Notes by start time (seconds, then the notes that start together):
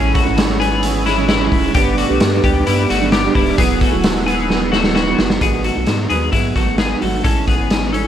Already playing: A1 A2 E3 G#3 C#4 E4 G#4 C#5 G#5 B5 E6
0.14 A3 F#4, kick, closed hi-hat
0.25 G#1 A2 E3 G#3 C#4 E4
0.38 snare, closed hi-hat
0.48 G#3 C#4 E4
0.60 B3 G#4, closed hi-hat
0.83 E3 G#3 C#4 E4, closed hi-hat
1.06 G#3 E4, snare, closed hi-hat
1.18 A2 E3 G#3 C#4 E4
1.28 G#3 E4, snare, closed hi-hat
1.41 A2 E3 G#3 C#4 E4
1.52 E1, kick, open hi-hat
1.75 G1 G2 D3 G3 B3 D4 G4 B4 D5 D6, kick, closed hi-hat
1.98 A3 F#4, closed hi-hat
2.09 B1 G2 D3 G3 B3 D4 G4
2.20 G2, snare, closed hi-hat
2.31 G3 B3 D4 G4
2.44 D2 B3 G4, kick, closed hi-hat
2.65 G2 G3 B3 D4 E4 G4, closed hi-hat
2.90 G1 A3 F#4, snare, closed hi-hat
3.00 G2 D3 G3 B3 D4 G4
3.12 B3 G4, snare, closed hi-hat
3.24 G2 D3 G3 B3 D4 G4
3.35 D1 G3 E4, kick, open hi-hat
3.58 E1 E3 F#3 B3 E4 G#4 F#5 G#5 E6, kick, closed hi-hat
3.81 A3 F#4, kick, closed hi-hat
3.91 D#1 E3 F#3 B3 E4 G#4
4.04 snare, closed hi-hat
4.15 B3 E4 G#4
4.26 B3 G#4, closed hi-hat
4.48 F#3 B3 E4 G#4, snare
4.72 A3 F#4, snare
4.83 E3 F#3 B3 E4 G#4, snare
4.95 B3 F#4, snare
5.06 E3 F#3 B3 E4 G#4
5.19 F#1, snare
5.30 snare
5.41 G#1 G#2 D#3 F#3 B3 F#4 G#4, kick, closed hi-hat
5.64 A3 F#4, closed hi-hat
5.75 B1 F#3 B3 F#4
5.86 G#2, snare, closed hi-hat
6.09 D#2 D#3 F#3 B3 F#4 G#4, closed hi-hat
6.32 G#2 D#3 F#3 G#3 B3 E4 F#4, kick, closed hi-hat
6.55 G#1 D#3 F#3 A3 B3 F#4, kick, snare, closed hi-hat
6.78 B3 G#4, snare, closed hi-hat
7.00 G#1 D#3 F#3 A3 B3 F#4, open hi-hat
7.23 A1 A2 E3 G#3 C#4 E4 A4, kick, closed hi-hat
7.47 B3 G#4, kick, closed hi-hat
7.58 G#1 G#3 C#4 E4
7.70 snare, closed hi-hat
7.92 E3 G#3 C#4 E4 A4, closed hi-hat